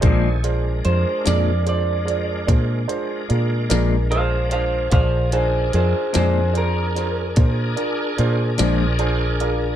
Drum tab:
HH |xxxxxxxxxxxx|xxxxxxxxxxxx|
SD |---o-----o--|---o-o---o--|
BD |o-----o-----|o-----o-----|